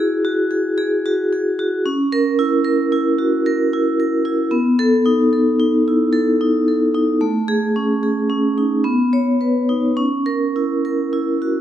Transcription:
0, 0, Header, 1, 2, 480
1, 0, Start_track
1, 0, Key_signature, 4, "minor"
1, 0, Tempo, 533808
1, 1663, Time_signature, 5, 2, 24, 8
1, 4064, Tempo, 540054
1, 7904, Tempo, 575816
1, 10212, End_track
2, 0, Start_track
2, 0, Title_t, "Vibraphone"
2, 0, Program_c, 0, 11
2, 0, Control_c, 0, 64, 127
2, 0, Note_on_c, 0, 64, 54
2, 0, Note_on_c, 0, 66, 46
2, 0, Note_on_c, 0, 68, 50
2, 129, Note_off_c, 0, 66, 0
2, 222, Note_on_c, 0, 66, 50
2, 367, Note_off_c, 0, 68, 0
2, 456, Note_on_c, 0, 68, 41
2, 606, Note_off_c, 0, 66, 0
2, 688, Note_off_c, 0, 68, 0
2, 699, Note_on_c, 0, 68, 57
2, 950, Note_on_c, 0, 66, 50
2, 1090, Note_off_c, 0, 68, 0
2, 1193, Note_on_c, 0, 68, 44
2, 1333, Note_off_c, 0, 66, 0
2, 1431, Note_on_c, 0, 66, 48
2, 1570, Note_off_c, 0, 68, 0
2, 1623, Note_off_c, 0, 64, 0
2, 1665, Note_off_c, 0, 66, 0
2, 1670, Note_on_c, 0, 61, 58
2, 1678, Control_c, 0, 64, 0
2, 1825, Control_c, 0, 64, 127
2, 1910, Note_on_c, 0, 70, 69
2, 2148, Note_on_c, 0, 64, 50
2, 2291, Note_off_c, 0, 70, 0
2, 2378, Note_on_c, 0, 70, 48
2, 2532, Note_off_c, 0, 64, 0
2, 2628, Note_on_c, 0, 64, 51
2, 2767, Note_off_c, 0, 70, 0
2, 2865, Note_on_c, 0, 66, 44
2, 3014, Note_off_c, 0, 64, 0
2, 3110, Note_off_c, 0, 66, 0
2, 3113, Note_on_c, 0, 70, 58
2, 3356, Note_on_c, 0, 64, 48
2, 3497, Note_off_c, 0, 70, 0
2, 3594, Note_on_c, 0, 70, 44
2, 3734, Note_off_c, 0, 64, 0
2, 3824, Note_on_c, 0, 64, 46
2, 3971, Note_off_c, 0, 70, 0
2, 4032, Note_off_c, 0, 61, 0
2, 4056, Note_on_c, 0, 59, 56
2, 4063, Note_off_c, 0, 64, 0
2, 4081, Control_c, 0, 64, 0
2, 4198, Control_c, 0, 64, 127
2, 4305, Note_on_c, 0, 69, 65
2, 4541, Note_on_c, 0, 63, 50
2, 4688, Note_off_c, 0, 69, 0
2, 4783, Note_on_c, 0, 69, 40
2, 4926, Note_off_c, 0, 63, 0
2, 5022, Note_on_c, 0, 63, 46
2, 5166, Note_off_c, 0, 69, 0
2, 5272, Note_on_c, 0, 64, 38
2, 5404, Note_off_c, 0, 63, 0
2, 5493, Note_on_c, 0, 69, 49
2, 5505, Note_off_c, 0, 64, 0
2, 5744, Note_on_c, 0, 63, 44
2, 5881, Note_off_c, 0, 69, 0
2, 5984, Note_on_c, 0, 69, 41
2, 6129, Note_off_c, 0, 63, 0
2, 6220, Note_on_c, 0, 63, 47
2, 6370, Note_off_c, 0, 69, 0
2, 6425, Note_off_c, 0, 59, 0
2, 6455, Note_on_c, 0, 57, 53
2, 6463, Note_off_c, 0, 63, 0
2, 6481, Control_c, 0, 64, 0
2, 6641, Control_c, 0, 64, 127
2, 6697, Note_on_c, 0, 68, 60
2, 6944, Note_on_c, 0, 61, 44
2, 7081, Note_off_c, 0, 68, 0
2, 7183, Note_on_c, 0, 68, 39
2, 7325, Note_off_c, 0, 61, 0
2, 7421, Note_on_c, 0, 61, 48
2, 7565, Note_off_c, 0, 68, 0
2, 7672, Note_on_c, 0, 63, 39
2, 7807, Note_off_c, 0, 61, 0
2, 7864, Note_off_c, 0, 57, 0
2, 7906, Note_on_c, 0, 59, 56
2, 7909, Note_off_c, 0, 63, 0
2, 7919, Control_c, 0, 64, 0
2, 8050, Control_c, 0, 64, 127
2, 8146, Note_on_c, 0, 73, 50
2, 8377, Note_on_c, 0, 71, 37
2, 8516, Note_off_c, 0, 73, 0
2, 8614, Note_on_c, 0, 63, 41
2, 8753, Note_off_c, 0, 71, 0
2, 8819, Note_off_c, 0, 59, 0
2, 8845, Note_on_c, 0, 61, 48
2, 8850, Note_off_c, 0, 63, 0
2, 8862, Control_c, 0, 64, 0
2, 8984, Control_c, 0, 64, 127
2, 9088, Note_on_c, 0, 70, 53
2, 9338, Note_on_c, 0, 64, 41
2, 9476, Note_off_c, 0, 70, 0
2, 9580, Note_on_c, 0, 70, 37
2, 9722, Note_off_c, 0, 64, 0
2, 9813, Note_on_c, 0, 64, 41
2, 9967, Note_off_c, 0, 70, 0
2, 10053, Note_on_c, 0, 66, 36
2, 10207, Note_off_c, 0, 64, 0
2, 10212, Note_off_c, 0, 61, 0
2, 10212, Note_off_c, 0, 66, 0
2, 10212, End_track
0, 0, End_of_file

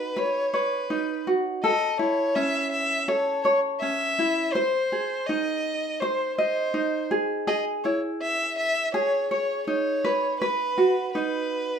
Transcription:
0, 0, Header, 1, 3, 480
1, 0, Start_track
1, 0, Key_signature, 4, "minor"
1, 0, Tempo, 730816
1, 1072, Time_signature, 4, 2, 24, 8
1, 7744, End_track
2, 0, Start_track
2, 0, Title_t, "Violin"
2, 0, Program_c, 0, 40
2, 0, Note_on_c, 0, 71, 77
2, 121, Note_on_c, 0, 73, 85
2, 131, Note_off_c, 0, 71, 0
2, 356, Note_on_c, 0, 71, 71
2, 366, Note_off_c, 0, 73, 0
2, 834, Note_off_c, 0, 71, 0
2, 1072, Note_on_c, 0, 75, 79
2, 1295, Note_off_c, 0, 75, 0
2, 1313, Note_on_c, 0, 73, 79
2, 1546, Note_on_c, 0, 76, 87
2, 1556, Note_off_c, 0, 73, 0
2, 1778, Note_off_c, 0, 76, 0
2, 1782, Note_on_c, 0, 76, 94
2, 2027, Note_on_c, 0, 73, 82
2, 2037, Note_off_c, 0, 76, 0
2, 2249, Note_off_c, 0, 73, 0
2, 2253, Note_on_c, 0, 73, 78
2, 2365, Note_off_c, 0, 73, 0
2, 2497, Note_on_c, 0, 76, 91
2, 2971, Note_on_c, 0, 72, 79
2, 2981, Note_off_c, 0, 76, 0
2, 3458, Note_on_c, 0, 75, 81
2, 3468, Note_off_c, 0, 72, 0
2, 3944, Note_on_c, 0, 72, 69
2, 3954, Note_off_c, 0, 75, 0
2, 4183, Note_off_c, 0, 72, 0
2, 4187, Note_on_c, 0, 72, 75
2, 4642, Note_off_c, 0, 72, 0
2, 4911, Note_on_c, 0, 75, 79
2, 5019, Note_off_c, 0, 75, 0
2, 5149, Note_on_c, 0, 73, 74
2, 5257, Note_off_c, 0, 73, 0
2, 5397, Note_on_c, 0, 76, 89
2, 5617, Note_off_c, 0, 76, 0
2, 5633, Note_on_c, 0, 76, 94
2, 5855, Note_off_c, 0, 76, 0
2, 5874, Note_on_c, 0, 73, 86
2, 6096, Note_off_c, 0, 73, 0
2, 6117, Note_on_c, 0, 73, 83
2, 6337, Note_off_c, 0, 73, 0
2, 6347, Note_on_c, 0, 73, 84
2, 6803, Note_off_c, 0, 73, 0
2, 6833, Note_on_c, 0, 71, 83
2, 7287, Note_off_c, 0, 71, 0
2, 7307, Note_on_c, 0, 71, 84
2, 7744, Note_off_c, 0, 71, 0
2, 7744, End_track
3, 0, Start_track
3, 0, Title_t, "Ukulele"
3, 0, Program_c, 1, 24
3, 0, Note_on_c, 1, 63, 62
3, 0, Note_on_c, 1, 66, 47
3, 0, Note_on_c, 1, 71, 67
3, 101, Note_off_c, 1, 71, 0
3, 109, Note_on_c, 1, 71, 66
3, 352, Note_on_c, 1, 73, 58
3, 585, Note_off_c, 1, 63, 0
3, 592, Note_on_c, 1, 63, 55
3, 827, Note_off_c, 1, 66, 0
3, 835, Note_on_c, 1, 66, 54
3, 1071, Note_off_c, 1, 71, 0
3, 1075, Note_on_c, 1, 69, 73
3, 1120, Note_off_c, 1, 63, 0
3, 1122, Note_off_c, 1, 66, 0
3, 1309, Note_on_c, 1, 64, 52
3, 1549, Note_on_c, 1, 61, 58
3, 2015, Note_off_c, 1, 69, 0
3, 2023, Note_on_c, 1, 69, 66
3, 2263, Note_off_c, 1, 73, 0
3, 2265, Note_on_c, 1, 73, 62
3, 2501, Note_off_c, 1, 61, 0
3, 2509, Note_on_c, 1, 61, 58
3, 2742, Note_off_c, 1, 64, 0
3, 2750, Note_on_c, 1, 64, 54
3, 2987, Note_off_c, 1, 69, 0
3, 2990, Note_on_c, 1, 72, 69
3, 3036, Note_off_c, 1, 73, 0
3, 3038, Note_off_c, 1, 61, 0
3, 3039, Note_off_c, 1, 64, 0
3, 3233, Note_on_c, 1, 68, 47
3, 3475, Note_on_c, 1, 63, 55
3, 3946, Note_off_c, 1, 72, 0
3, 3954, Note_on_c, 1, 72, 67
3, 4193, Note_on_c, 1, 75, 62
3, 4423, Note_off_c, 1, 63, 0
3, 4426, Note_on_c, 1, 63, 56
3, 4667, Note_off_c, 1, 68, 0
3, 4670, Note_on_c, 1, 68, 57
3, 4906, Note_off_c, 1, 72, 0
3, 4908, Note_off_c, 1, 68, 0
3, 4908, Note_on_c, 1, 68, 69
3, 5154, Note_off_c, 1, 63, 0
3, 5156, Note_on_c, 1, 64, 47
3, 5176, Note_off_c, 1, 75, 0
3, 5864, Note_off_c, 1, 68, 0
3, 5871, Note_on_c, 1, 68, 73
3, 6115, Note_on_c, 1, 73, 58
3, 6351, Note_off_c, 1, 64, 0
3, 6354, Note_on_c, 1, 63, 54
3, 6591, Note_off_c, 1, 68, 0
3, 6598, Note_on_c, 1, 71, 69
3, 6835, Note_off_c, 1, 71, 0
3, 6841, Note_on_c, 1, 71, 68
3, 6861, Note_off_c, 1, 73, 0
3, 7078, Note_on_c, 1, 66, 52
3, 7321, Note_off_c, 1, 63, 0
3, 7324, Note_on_c, 1, 63, 59
3, 7744, Note_off_c, 1, 63, 0
3, 7744, Note_off_c, 1, 66, 0
3, 7744, Note_off_c, 1, 71, 0
3, 7744, End_track
0, 0, End_of_file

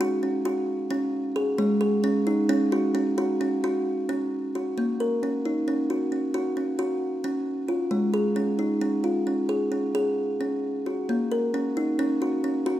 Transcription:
0, 0, Header, 1, 2, 480
1, 0, Start_track
1, 0, Key_signature, -6, "minor"
1, 0, Tempo, 451807
1, 959, Time_signature, 7, 3, 24, 8
1, 13597, End_track
2, 0, Start_track
2, 0, Title_t, "Kalimba"
2, 0, Program_c, 0, 108
2, 7, Note_on_c, 0, 66, 86
2, 178, Note_off_c, 0, 66, 0
2, 243, Note_on_c, 0, 61, 64
2, 415, Note_off_c, 0, 61, 0
2, 482, Note_on_c, 0, 66, 81
2, 828, Note_off_c, 0, 66, 0
2, 962, Note_on_c, 0, 61, 82
2, 1308, Note_off_c, 0, 61, 0
2, 1444, Note_on_c, 0, 68, 72
2, 1616, Note_off_c, 0, 68, 0
2, 1683, Note_on_c, 0, 56, 83
2, 1857, Note_off_c, 0, 56, 0
2, 1920, Note_on_c, 0, 68, 72
2, 2096, Note_off_c, 0, 68, 0
2, 2164, Note_on_c, 0, 61, 85
2, 2339, Note_off_c, 0, 61, 0
2, 2409, Note_on_c, 0, 63, 73
2, 2582, Note_off_c, 0, 63, 0
2, 2648, Note_on_c, 0, 61, 96
2, 2822, Note_off_c, 0, 61, 0
2, 2892, Note_on_c, 0, 66, 80
2, 3065, Note_off_c, 0, 66, 0
2, 3131, Note_on_c, 0, 61, 76
2, 3306, Note_off_c, 0, 61, 0
2, 3377, Note_on_c, 0, 66, 79
2, 3551, Note_off_c, 0, 66, 0
2, 3621, Note_on_c, 0, 61, 73
2, 3795, Note_off_c, 0, 61, 0
2, 3866, Note_on_c, 0, 66, 82
2, 4215, Note_off_c, 0, 66, 0
2, 4347, Note_on_c, 0, 61, 74
2, 4696, Note_off_c, 0, 61, 0
2, 4837, Note_on_c, 0, 66, 61
2, 5008, Note_off_c, 0, 66, 0
2, 5074, Note_on_c, 0, 58, 66
2, 5246, Note_off_c, 0, 58, 0
2, 5315, Note_on_c, 0, 70, 62
2, 5486, Note_off_c, 0, 70, 0
2, 5557, Note_on_c, 0, 61, 72
2, 5726, Note_off_c, 0, 61, 0
2, 5795, Note_on_c, 0, 63, 65
2, 5964, Note_off_c, 0, 63, 0
2, 6032, Note_on_c, 0, 61, 72
2, 6201, Note_off_c, 0, 61, 0
2, 6269, Note_on_c, 0, 66, 66
2, 6439, Note_off_c, 0, 66, 0
2, 6503, Note_on_c, 0, 61, 60
2, 6674, Note_off_c, 0, 61, 0
2, 6739, Note_on_c, 0, 66, 74
2, 6911, Note_off_c, 0, 66, 0
2, 6978, Note_on_c, 0, 61, 62
2, 7150, Note_off_c, 0, 61, 0
2, 7212, Note_on_c, 0, 66, 75
2, 7557, Note_off_c, 0, 66, 0
2, 7694, Note_on_c, 0, 61, 74
2, 8036, Note_off_c, 0, 61, 0
2, 8164, Note_on_c, 0, 65, 69
2, 8337, Note_off_c, 0, 65, 0
2, 8403, Note_on_c, 0, 56, 72
2, 8576, Note_off_c, 0, 56, 0
2, 8644, Note_on_c, 0, 68, 70
2, 8817, Note_off_c, 0, 68, 0
2, 8882, Note_on_c, 0, 61, 73
2, 9055, Note_off_c, 0, 61, 0
2, 9124, Note_on_c, 0, 63, 68
2, 9297, Note_off_c, 0, 63, 0
2, 9364, Note_on_c, 0, 61, 72
2, 9537, Note_off_c, 0, 61, 0
2, 9603, Note_on_c, 0, 65, 65
2, 9776, Note_off_c, 0, 65, 0
2, 9846, Note_on_c, 0, 61, 67
2, 10019, Note_off_c, 0, 61, 0
2, 10082, Note_on_c, 0, 68, 66
2, 10257, Note_off_c, 0, 68, 0
2, 10323, Note_on_c, 0, 61, 63
2, 10498, Note_off_c, 0, 61, 0
2, 10569, Note_on_c, 0, 68, 74
2, 10919, Note_off_c, 0, 68, 0
2, 11055, Note_on_c, 0, 61, 66
2, 11404, Note_off_c, 0, 61, 0
2, 11541, Note_on_c, 0, 66, 60
2, 11714, Note_off_c, 0, 66, 0
2, 11784, Note_on_c, 0, 58, 72
2, 11955, Note_off_c, 0, 58, 0
2, 12021, Note_on_c, 0, 70, 64
2, 12193, Note_off_c, 0, 70, 0
2, 12261, Note_on_c, 0, 61, 76
2, 12433, Note_off_c, 0, 61, 0
2, 12503, Note_on_c, 0, 63, 70
2, 12673, Note_off_c, 0, 63, 0
2, 12739, Note_on_c, 0, 61, 81
2, 12909, Note_off_c, 0, 61, 0
2, 12980, Note_on_c, 0, 66, 66
2, 13148, Note_off_c, 0, 66, 0
2, 13217, Note_on_c, 0, 61, 65
2, 13385, Note_off_c, 0, 61, 0
2, 13452, Note_on_c, 0, 66, 77
2, 13597, Note_off_c, 0, 66, 0
2, 13597, End_track
0, 0, End_of_file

